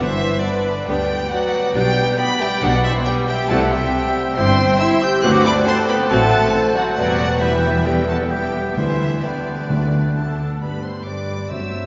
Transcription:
0.00 double bass section G1, timpani G2, cello section G2, french horn section E3, bassoon B3, viola section B3 D4, violin section E4 E5, clarinet B4, flute section C5, oboe D5
0.43 french horn section D3, violin section D4 D5, flute section B4
0.87 double bass section D2, cello section D2, french horn section G3, viola section B3 D4, violin section G4 G5, flute section D5
1.30 french horn section F#3, violin section F#4 F#5, clarinet B4, flute section D5
1.74 double bass section B1, cello section B2, viola section G3 D4, french horn section G3, violin section G4 G5, flute section D5
2.17 french horn section B3, violin section B4 B5, clarinet D5, flute section G5
2.39 french horn section G3, violin section G4 G5, flute section E5
2.61 double bass section B1, cello section B2, french horn section F#3, viola section G3 D4, violin section F#4 F#5, flute section D5
2.84 french horn section E3, violin section E4 E5, flute section C5
3.05 french horn section G3, violin section G4 G5, flute section D5
3.27 french horn section G3, violin section G4 G5, flute section E5
3.48 double bass section C2, cello section C3, viola section G3 E4, french horn section A3, bassoon C4, violin section A4 A5, clarinet E5, oboe E5, flute section F#5
3.71 french horn section G3, violin section G4 G5, flute section E5
4.36 double bass section G1, cello section G2, viola section G3 E4, french horn section C4, clarinet C5, violin section C5 C6, flute section G5
4.79 french horn section E4, violin section E5 E6, flute section C6
5.01 french horn section G4, violin section G5 G6, flute section E6
5.22 double bass section D2, cello section D2, timpani D3, viola section F#3 C4, french horn section F#4, clarinet B4, oboe F#5, violin section F#5 F#6, flute section D6
5.44 french horn section D4, violin section D5 D6, flute section B5
5.66 french horn section C4, clarinet A4, violin section C5 C6, flute section A5
5.88 french horn section B3, violin section B4 B5, flute section G5
6.09 double bass section A1, cello section A2, viola section F#3 C4, french horn section A3, violin section A4 A5, flute section F#5
6.54 clarinet C5
6.74 french horn section F#3, violin section F#4 F#5, flute section D5
6.97 double bass section E1, cello section E2, french horn section F#3, viola section G3 B3, bassoon B3, violin section F#4 F#5, clarinet B4, flute section D5, oboe G5
7.41 french horn section E3, viola section G3 B3, bassoon B3, violin section E4 E5, flute section B4, oboe G5
7.85 viola section G3 B3, french horn section G3, bassoon B3, violin section G4 G5, clarinet A4, flute section E5, oboe G5
8.07 french horn section A3, violin section A4 A5, flute section F#5
8.30 viola section G3 B3, french horn section G3, bassoon B3, clarinet G4, violin section G4 G5, flute section E5, oboe G5
8.76 cello section D2, double bass section D2, timpani D3, french horn section E3, viola section G3 B3, bassoon B3, violin section E4 E5, clarinet B4, flute section C5, oboe G5
9.24 french horn section D3, bassoon B3, viola section B3, violin section D4 D5, flute section B4, oboe G5
9.69 cello section D2, double bass section D2, timpani D3, bassoon A3, viola section A3, oboe F#5
10.16 viola section D4, clarinet A4, flute section A4, violin section A4 A5
10.61 double bass section G1, cello section G2, viola section D3 B3, bassoon G3, french horn section B3 G4, flute section B4, clarinet B4, violin section B4 B5, oboe B4
10.73 viola section G3 D4
10.83 viola section D3 B3, clarinet C5, flute section C5, violin section C5 C6
10.95 viola section G3 D4
11.06 double bass section G1, cello section G2, viola section D3 B3, bassoon G3, oboe B4, clarinet D5, flute section D5, violin section D5 D6
11.17 viola section G3 D4
11.29 viola section D3 B3
11.39 viola section G3 D4
11.50 double bass section G1, timpani G2, cello section G2, bassoon F#3, viola section A3 C4, french horn section C4 F#4, oboe C5, clarinet E5, violin section E5 E6, flute section E5
11.62 viola section F#3 D4
11.73 viola section A3 C4

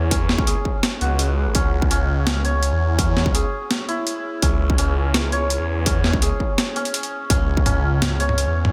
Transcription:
Already playing: detuned saw bass E2, santur C#4 E4 G#4 C#5
0.11 santur C#4, kick, closed hi-hat
0.29 snare
0.38 detuned saw bass C#2, kick
0.47 santur G#4, closed hi-hat
0.65 kick
0.83 snare, closed hi-hat
1.01 detuned saw bass C#2, santur F#4, closed hi-hat
1.19 closed hi-hat
1.46 detuned saw bass G#1
1.55 detuned saw bass C#2, santur C#4, kick, closed hi-hat
1.82 kick
1.91 santur C#4, closed hi-hat
2.27 snare, closed hi-hat
2.45 santur C#5, closed hi-hat
2.63 closed hi-hat
2.72 detuned saw bass E2
2.99 santur C#4, kick, closed hi-hat
3.17 snare
3.26 detuned saw bass C#2, kick
3.35 santur G#4, closed hi-hat
3.71 snare, closed hi-hat
3.88 santur E4, closed hi-hat
4.07 closed hi-hat
4.42 detuned saw bass C#2, santur C#4, kick, closed hi-hat
4.70 kick
4.78 santur C#4, closed hi-hat
5.14 snare, closed hi-hat
5.32 santur C#5, closed hi-hat
5.50 closed hi-hat
5.59 detuned saw bass E2
5.86 santur C#4, kick, closed hi-hat
6.04 snare
6.13 detuned saw bass C#2, kick
6.22 santur G#4, closed hi-hat
6.40 kick
6.58 snare, closed hi-hat
6.76 santur C#4, closed hi-hat
6.85 closed hi-hat
6.94 closed hi-hat
7.03 closed hi-hat
7.30 detuned saw bass C#2, santur C#4, kick, closed hi-hat, mid tom
7.57 kick
7.66 santur C#4, closed hi-hat, mid tom
8.02 snare, closed hi-hat, mid tom
8.20 santur C#5, closed hi-hat
8.29 mid tom
8.38 closed hi-hat
8.47 detuned saw bass E2
8.65 mid tom

